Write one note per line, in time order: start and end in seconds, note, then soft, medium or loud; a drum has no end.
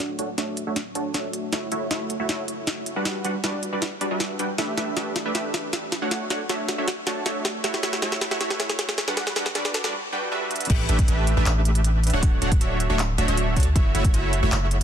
0.00 0.17 D1 medium
0.00 0.17 A3 medium
0.00 0.17 D4 medium
0.00 0.17 F#4 medium
0.00 0.17 C#5 medium
0.00 0.17 F#5 loud
0.19 0.36 D1 medium
0.19 0.29 A3 medium
0.19 0.29 D4 medium
0.19 0.29 F#4 medium
0.19 0.29 C#5 medium
0.19 0.29 F#5 medium
0.19 closed hi-hat medium
0.38 0.65 D1 medium
0.38 0.65 A3 medium
0.38 0.65 D4 medium
0.38 0.65 F#4 medium
0.38 0.65 C#5 medium
0.38 0.65 E5 medium
0.38 snare soft
0.38 closed hi-hat medium
0.57 closed hi-hat medium
0.67 0.93 D1 medium
0.67 0.77 A3 medium
0.67 0.77 D4 medium
0.67 0.77 F#4 medium
0.67 0.77 C#5 medium
0.67 0.77 E5 medium
0.76 snare medium
0.76 closed hi-hat medium
0.95 1.13 D1 medium
0.95 1.12 A3 medium
0.95 1.12 D4 medium
0.95 1.12 F#4 medium
0.95 1.12 C#5 medium
0.95 1.12 A5 medium
0.95 closed hi-hat medium
1.14 1.51 D1 medium
1.14 1.50 A3 medium
1.14 1.50 D4 medium
1.14 1.50 F#4 medium
1.14 1.50 C#5 medium
1.14 1.50 E5 medium
1.14 snare medium
1.14 closed hi-hat medium
1.33 closed hi-hat medium
1.53 1.70 F#1 medium
1.53 1.70 A3 medium
1.53 1.70 E4 medium
1.53 1.70 F#4 medium
1.53 1.70 C#5 medium
1.53 1.70 E5 medium
1.53 snare medium
1.53 closed hi-hat medium
1.72 1.89 F#1 medium
1.72 1.89 A3 medium
1.72 1.89 E4 medium
1.72 1.89 F#4 medium
1.72 1.89 C#5 medium
1.72 1.89 E5 loud
1.72 closed hi-hat medium
1.91 2.18 F#1 medium
1.91 2.17 A3 medium
1.91 2.17 E4 medium
1.91 2.17 F#4 medium
1.91 2.17 C#5 medium
1.91 2.17 E5 loud
1.91 snare medium
1.91 closed hi-hat medium
2.10 closed hi-hat medium
2.20 2.27 F#1 loud
2.20 2.27 A3 medium
2.20 2.27 E4 medium
2.20 2.27 F#4 medium
2.20 2.27 C#5 medium
2.20 2.27 E5 medium
2.29 2.98 F#1 medium
2.29 2.94 A3 medium
2.29 2.94 E4 medium
2.29 2.94 F#4 medium
2.29 2.94 C#5 medium
2.29 2.94 E5 medium
2.29 snare medium
2.29 closed hi-hat medium
2.48 closed hi-hat medium
2.67 snare medium
2.67 closed hi-hat medium
2.86 closed hi-hat medium
2.96 3.23 E1 medium
2.96 3.22 G3 medium
2.96 3.22 D4 medium
2.96 3.22 F#4 medium
2.96 3.22 B4 medium
2.96 3.22 F#5 loud
3.05 snare medium
3.05 closed hi-hat medium
3.25 3.42 E1 medium
3.25 3.35 G3 medium
3.25 3.35 D4 medium
3.25 3.35 F#4 medium
3.25 3.35 B4 medium
3.25 3.35 F#5 loud
3.25 closed hi-hat medium
3.44 3.71 E1 medium
3.44 3.70 G3 medium
3.44 3.70 D4 medium
3.44 3.70 F#4 medium
3.44 3.70 B4 medium
3.44 3.70 D5 medium
3.44 snare medium
3.44 closed hi-hat medium
3.63 closed hi-hat medium
3.73 3.99 E1 medium
3.73 3.82 G3 medium
3.73 3.82 D4 medium
3.73 3.82 F#4 medium
3.73 3.82 B4 medium
3.73 3.82 D5 medium
3.82 snare medium
3.82 closed hi-hat medium
4.01 4.09 E1 loud
4.01 4.09 G3 medium
4.01 4.09 D4 medium
4.01 4.09 F#4 medium
4.01 4.09 B4 medium
4.01 4.09 D5 medium
4.01 closed hi-hat medium
4.11 4.37 E1 medium
4.11 4.37 G3 medium
4.11 4.37 D4 medium
4.11 4.37 F#4 medium
4.11 4.37 B4 medium
4.11 4.37 E5 medium
4.20 snare medium
4.20 closed hi-hat medium
4.39 4.57 E1 medium
4.39 4.50 G3 medium
4.39 4.50 D4 medium
4.39 4.50 F#4 medium
4.39 4.50 B4 medium
4.39 4.50 G5 medium
4.39 closed hi-hat medium
4.58 4.76 A1 loud
4.58 4.75 A3 medium
4.58 4.75 D4 medium
4.58 4.75 G4 medium
4.58 4.75 B4 medium
4.58 4.75 E5 medium
4.58 snare medium
4.58 closed hi-hat medium
4.77 4.95 A1 medium
4.77 4.94 A3 medium
4.77 4.94 D4 medium
4.77 4.94 G4 medium
4.77 4.94 B4 medium
4.77 4.94 E5 loud
4.77 snare medium
4.77 closed hi-hat medium
4.97 5.24 A1 medium
4.97 5.23 A3 medium
4.97 5.23 D4 medium
4.97 5.23 G4 medium
4.97 5.23 B4 medium
4.97 5.23 E5 loud
4.97 snare medium
4.97 closed hi-hat medium
5.16 snare medium
5.16 closed hi-hat medium
5.26 5.33 A1 medium
5.26 5.33 A3 medium
5.26 5.33 D4 medium
5.26 5.33 G4 medium
5.26 5.33 B4 medium
5.26 5.33 E5 medium
5.35 6.03 A1 loud
5.35 6.00 A3 medium
5.35 6.00 D4 medium
5.35 6.00 G4 medium
5.35 6.00 B4 medium
5.35 6.00 E5 medium
5.35 snare medium
5.35 closed hi-hat medium
5.54 snare medium
5.54 closed hi-hat medium
5.73 snare medium
5.73 closed hi-hat medium
5.92 snare medium
5.92 closed hi-hat medium
6.02 6.29 D1 medium
6.02 6.28 A3 medium
6.02 6.28 D4 medium
6.02 6.28 F#4 medium
6.02 6.28 C#5 medium
6.02 6.28 F#5 loud
6.11 snare medium
6.11 closed hi-hat medium
6.30 6.48 D1 medium
6.30 6.41 A3 medium
6.30 6.41 D4 medium
6.30 6.41 F#4 medium
6.30 6.41 C#5 medium
6.30 6.41 F#5 loud
6.30 snare medium
6.30 closed hi-hat medium
6.49 6.76 D1 medium
6.49 6.76 A3 medium
6.49 6.76 D4 medium
6.49 6.76 F#4 medium
6.49 6.76 C#5 medium
6.49 6.76 E5 medium
6.49 snare medium
6.49 closed hi-hat medium
6.68 snare medium
6.68 closed hi-hat medium
6.78 7.05 D1 loud
6.78 6.88 A3 medium
6.78 6.88 D4 medium
6.78 6.88 F#4 medium
6.78 6.88 C#5 medium
6.78 6.88 E5 loud
6.88 snare medium
6.88 closed hi-hat medium
7.07 7.24 D1 loud
7.07 7.24 A3 medium
7.07 7.24 D4 medium
7.07 7.24 F#4 medium
7.07 7.24 C#5 medium
7.07 7.24 A5 medium
7.07 snare medium
7.07 closed hi-hat medium
7.26 7.62 D1 loud
7.26 7.62 A3 medium
7.26 7.62 D4 medium
7.26 7.62 F#4 medium
7.26 7.62 C#5 medium
7.26 7.62 E5 medium
7.26 snare medium
7.26 closed hi-hat medium
7.45 snare medium
7.45 closed hi-hat medium
7.64 7.81 F#1 medium
7.64 7.81 A3 medium
7.64 7.81 E4 medium
7.64 7.81 F#4 medium
7.64 7.81 C#5 medium
7.64 7.81 E5 loud
7.64 snare medium
7.64 closed hi-hat medium
7.74 snare medium
7.83 8.00 F#1 loud
7.83 8.00 A3 loud
7.83 8.00 E4 medium
7.83 8.00 F#4 medium
7.83 8.00 C#5 medium
7.83 8.00 E5 loud
7.83 snare loud
7.83 closed hi-hat medium
7.93 snare medium
8.02 8.29 F#1 medium
8.02 8.29 A3 medium
8.02 8.29 E4 medium
8.02 8.29 F#4 medium
8.02 8.29 C#5 medium
8.02 8.29 E5 loud
8.02 snare medium
8.02 closed hi-hat medium
8.12 snare medium
8.21 snare medium
8.21 closed hi-hat medium
8.31 8.39 F#1 medium
8.31 8.38 A3 medium
8.31 8.38 E4 medium
8.31 8.38 F#4 medium
8.31 8.38 C#5 medium
8.31 8.38 E5 medium
8.31 snare medium
8.40 9.06 F#1 loud
8.40 9.05 A3 medium
8.40 9.05 E4 medium
8.40 9.05 F#4 medium
8.40 9.05 C#5 medium
8.40 9.05 E5 medium
8.40 snare loud
8.40 closed hi-hat medium
8.50 snare medium
8.60 snare loud
8.60 closed hi-hat medium
8.70 snare medium
8.79 snare loud
8.79 closed hi-hat medium
8.89 snare medium
8.98 snare loud
8.98 closed hi-hat medium
9.08 9.34 E1 loud
9.08 9.34 G3 medium
9.08 9.34 D4 medium
9.08 9.34 F#4 medium
9.08 9.34 B4 medium
9.08 9.34 F#5 loud
9.08 snare medium
9.17 snare loud
9.17 closed hi-hat medium
9.27 snare medium
9.36 9.53 E1 loud
9.36 9.46 G3 medium
9.36 9.46 D4 medium
9.36 9.46 F#4 medium
9.36 9.46 B4 medium
9.36 9.46 F#5 loud
9.36 snare loud
9.36 closed hi-hat medium
9.46 snare medium
9.55 9.82 E1 loud
9.55 9.82 G3 medium
9.55 9.82 D4 medium
9.55 9.82 F#4 medium
9.55 9.82 B4 medium
9.55 9.82 D5 medium
9.55 snare loud
9.55 closed hi-hat medium
9.65 snare medium
9.74 snare loud
9.74 closed hi-hat medium
9.84 9.93 E1 loud
9.84 9.94 G3 medium
9.84 9.94 D4 medium
9.84 9.94 F#4 medium
9.84 9.94 B4 medium
9.84 9.94 D5 loud
9.84 snare medium
10.13 10.29 G3 medium
10.13 10.29 D4 medium
10.13 10.29 F#4 medium
10.13 10.29 B4 medium
10.13 10.29 G5 medium
10.32 10.68 G3 medium
10.32 10.68 D4 medium
10.32 10.68 F#4 medium
10.32 10.68 B4 medium
10.32 10.68 E5 loud
10.51 closed hi-hat medium
10.56 closed hi-hat medium
10.61 closed hi-hat medium
10.65 closed hi-hat medium
10.70 10.87 A1 loud
10.70 10.87 A3 medium
10.70 10.87 D4 medium
10.70 10.87 G4 medium
10.70 10.87 B4 medium
10.70 10.87 E5 loud
10.70 kick loud
10.70 closed hi-hat medium
10.70 crash loud
10.89 11.06 A1 loud
10.89 11.06 A3 medium
10.89 11.06 D4 medium
10.89 11.06 G4 medium
10.89 11.06 B4 medium
10.89 11.06 E5 loud
10.89 closed hi-hat medium
10.99 kick loud
10.99 closed hi-hat medium
11.08 11.35 A1 medium
11.08 11.35 A3 medium
11.08 11.35 D4 medium
11.08 11.35 G4 medium
11.08 11.35 B4 medium
11.08 11.35 E5 loud
11.08 closed hi-hat medium
11.27 closed hi-hat medium
11.37 11.44 A1 loud
11.37 11.44 A3 medium
11.37 11.44 D4 medium
11.37 11.44 G4 medium
11.37 11.44 B4 medium
11.37 11.44 E5 medium
11.46 12.11 A1 loud
11.46 12.11 A3 medium
11.46 12.11 D4 medium
11.46 12.11 G4 medium
11.46 12.11 B4 medium
11.46 12.11 E5 medium
11.46 clap loud
11.46 closed hi-hat medium
11.65 closed hi-hat medium
11.75 closed hi-hat medium
11.84 closed hi-hat medium
12.04 closed hi-hat medium
12.07 closed hi-hat medium
12.10 12.40 D1 medium
12.10 12.40 A3 medium
12.10 12.40 D4 medium
12.10 12.40 F#4 medium
12.10 12.40 C#5 medium
12.10 12.40 F#5 loud
12.10 closed hi-hat medium
12.23 kick loud
12.23 closed hi-hat medium
12.42 12.59 D1 loud
12.42 12.52 A3 medium
12.42 12.52 D4 medium
12.42 12.52 F#4 medium
12.42 12.52 C#5 medium
12.42 12.52 F#5 loud
12.42 closed hi-hat medium
12.52 kick loud
12.52 closed hi-hat medium
12.61 12.88 D1 loud
12.61 12.88 A3 medium
12.61 12.88 D4 medium
12.61 12.88 F#4 medium
12.61 12.88 C#5 medium
12.61 12.88 E5 medium
12.61 closed hi-hat medium
12.80 closed hi-hat medium
12.90 13.16 D1 medium
12.90 13.00 A3 medium
12.90 12.99 D4 medium
12.90 12.99 F#4 medium
12.90 12.99 C#5 medium
12.90 12.99 E5 loud
12.99 clap loud
12.99 closed hi-hat medium
13.18 13.26 D1 loud
13.18 13.26 A3 medium
13.18 13.26 D4 medium
13.18 13.26 F#4 medium
13.18 13.26 C#5 medium
13.18 13.26 E5 loud
13.18 closed hi-hat medium
13.28 13.58 D1 loud
13.28 13.54 A3 medium
13.28 13.54 D4 medium
13.28 13.54 F#4 medium
13.28 13.54 C#5 medium
13.28 13.54 E5 medium
13.28 closed hi-hat medium
13.37 closed hi-hat medium
13.56 13.74 D2 medium
13.56 13.67 A3 medium
13.56 13.67 D4 medium
13.56 13.67 F#4 medium
13.56 13.67 C#5 medium
13.56 13.67 A5 medium
13.56 kick medium
13.56 closed hi-hat soft
13.60 closed hi-hat medium
13.63 closed hi-hat medium
13.76 13.93 F#1 loud
13.76 13.92 A3 medium
13.76 13.92 E4 medium
13.76 13.92 F#4 medium
13.76 13.92 C#5 medium
13.76 13.92 E5 loud
13.76 kick loud
13.76 closed hi-hat medium
13.95 14.12 F#1 loud
13.95 14.12 A3 loud
13.95 14.12 E4 medium
13.95 14.12 F#4 medium
13.95 14.12 C#5 medium
13.95 14.12 E5 loud
13.95 closed hi-hat medium
14.05 kick loud
14.05 closed hi-hat medium
14.14 14.41 F#1 medium
14.14 14.40 A3 medium
14.14 14.40 E4 medium
14.14 14.40 F#4 medium
14.14 14.40 C#5 medium
14.14 14.40 E5 loud
14.14 closed hi-hat medium
14.33 closed hi-hat medium
14.43 14.50 F#1 loud
14.43 14.50 A3 medium
14.43 14.50 E4 medium
14.43 14.50 F#4 medium
14.43 14.50 C#5 medium
14.43 14.50 E5 medium
14.52 14.83 F#1 loud
14.52 14.83 A3 medium
14.52 14.83 E4 medium
14.52 14.83 C#5 medium
14.52 14.83 E5 medium
14.52 clap loud
14.52 closed hi-hat medium
14.71 closed hi-hat medium